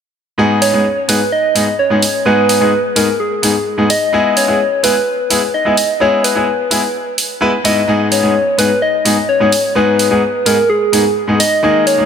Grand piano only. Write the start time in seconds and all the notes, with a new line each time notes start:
0.38 G#2 G#3 B3 D#4 G#4
0.73 G#2 G#3 B3 D#4 G#4
1.08 G#2 G#3 B3 D#4 G#4
1.55 G#2 G#3 B3 D#4 G#4
1.90 G#2 G#3 B3 D#4 G#4
2.25 G#2 G#3 B3 D#4 G#4
2.60 G#2 G#3 B3 D#4 G#4
2.96 G#2 G#3 B3 D#4 G#4
3.42 G#2 G#3 B3 D#4 G#4
3.78 G#2 G#3 B3 D#4 G#4
4.13 G#3 B3 E4 G#4
4.48 G#3 B3 E4 G#4
4.83 G#3 B3 E4 G#4
5.30 G#3 B3 E4 G#4
5.65 G#3 B3 E4 G#4
6.00 G#3 B3 E4 G#4
6.35 G#3 B3 E4 G#4
6.70 G#3 B3 E4 G#4
7.41 G#3 B3 E4 B4
7.64 G#2 G#3 B3 E4 B4
7.88 G#2 G#3 B3 D#4 G#4
8.23 G#2 G#3 B3 D#4 G#4
8.58 G#2 G#3 B3 D#4 G#4
9.05 G#2 G#3 B3 D#4 G#4
9.40 G#2 G#3 B3 D#4 G#4
9.75 G#2 G#3 B3 D#4 G#4
10.10 G#2 G#3 B3 D#4 G#4
10.45 G#2 G#3 B3 D#4 G#4
10.92 G#2 G#3 B3 D#4 G#4
11.27 G#2 G#3 B3 D#4 G#4
11.63 D#3 G#3 A#3 D#4 G#4
11.98 D#3 G#3 A#3 D#4 G#4